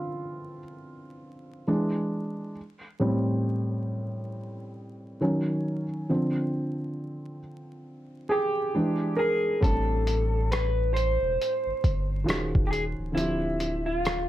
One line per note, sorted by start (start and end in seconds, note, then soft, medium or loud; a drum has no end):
0.00 1.64 D3 soft
0.00 1.64 F3 soft
0.00 1.64 C4 medium
0.00 1.70 E4 medium
0.00 0.59 F4 medium
1.67 2.52 E3 soft
1.67 2.52 G#3 medium
1.67 2.52 D4 medium
3.00 5.17 A2 medium
3.00 5.17 G3 medium
3.00 5.17 C4 medium
5.21 5.83 D#3 medium
5.21 5.84 F#3 soft
5.21 5.84 C#4 medium
6.09 7.38 D3 soft
6.09 7.38 F3 soft
6.09 7.38 C4 medium
8.29 9.15 G4 medium
8.29 9.20 G#4 medium
8.74 9.58 E3 medium
8.74 9.59 G#3 soft
8.74 9.59 D4 medium
9.17 9.60 G#4 medium
9.17 9.58 A#4 medium
9.61 11.18 A1 loud
9.61 12.22 A2 medium
9.61 12.23 G3 medium
9.61 12.23 C4 medium
9.61 12.24 D4 medium
9.61 10.51 A4 loud
9.61 kick loud
9.61 closed hi-hat medium
9.66 12.25 A4 medium
10.07 closed hi-hat medium
10.52 10.94 B4 loud
10.52 cross-stick loud
10.52 closed hi-hat medium
10.94 12.61 C5 loud
10.94 closed hi-hat medium
11.22 11.38 E1 medium
11.41 closed hi-hat medium
11.66 11.73 G1 medium
11.84 12.25 G1 medium
11.84 kick loud
11.84 closed hi-hat medium
12.24 12.94 D#1 loud
12.24 13.14 D#3 medium
12.24 13.14 C#4 medium
12.24 13.15 F4 medium
12.24 13.15 F#4 medium
12.24 13.15 G#4 medium
12.29 cross-stick loud
12.29 closed hi-hat medium
12.55 kick loud
12.67 12.70 G4 medium
12.67 12.83 G#4 loud
12.73 closed hi-hat medium
12.98 13.15 C#1 medium
13.12 14.29 D1 loud
13.12 14.29 D3 medium
13.12 14.29 C4 medium
13.12 13.86 E4 medium
13.12 14.29 E5 medium
13.16 14.29 F3 medium
13.16 14.29 G4 medium
13.16 closed hi-hat medium
13.60 closed hi-hat medium
13.86 14.29 F4 medium
14.05 cross-stick loud
14.05 closed hi-hat loud